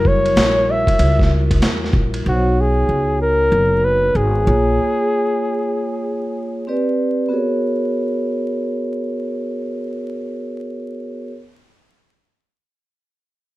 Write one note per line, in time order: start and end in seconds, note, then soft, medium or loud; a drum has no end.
0.00 0.33 F#1 medium
0.00 2.21 G3 medium
0.00 2.22 E4 medium
0.00 2.22 F#4 medium
0.00 2.22 A#4 medium
0.05 0.72 C#5 loud
0.05 kick medium
0.26 ride medium
0.36 0.96 A#1 medium
0.36 snare loud
0.36 hi-hat pedal medium
0.36 ride medium
0.71 1.33 E5 loud
0.87 kick medium
0.87 ride medium
0.99 1.59 C#2 medium
0.99 ride medium
1.19 kick medium
1.19 snare soft
1.51 kick medium
1.51 ride medium
1.62 1.92 E2 medium
1.62 snare medium
1.62 hi-hat pedal soft
1.62 ride medium
1.84 snare soft
1.93 2.24 A#1 medium
1.93 kick medium
2.14 ride medium
2.24 2.86 B1 loud
2.24 4.42 B3 medium
2.24 4.42 D#4 soft
2.24 4.43 F#4 soft
2.24 2.34 C5 soft
2.28 2.62 F#4 medium
2.33 4.46 C#5 medium
2.60 3.21 G#4 loud
2.89 3.49 C#2 medium
3.21 3.86 A#4 loud
3.52 4.12 F#1 medium
3.84 4.18 B4 loud
4.15 4.45 G#1 medium
4.15 6.68 G#4 medium
4.45 4.77 A#1 loud
4.45 6.63 A#3 medium
4.45 6.63 F4 medium
4.45 6.64 G#4 medium
4.45 6.64 C#5 medium
6.67 7.31 C4 medium
6.67 7.31 G4 medium
6.67 7.31 B4 medium
6.67 7.32 D5 medium
7.29 11.29 B3 medium
7.29 11.29 F#4 medium
7.29 11.30 G#4 medium
7.29 11.30 A#4 medium
7.34 11.31 C#5 medium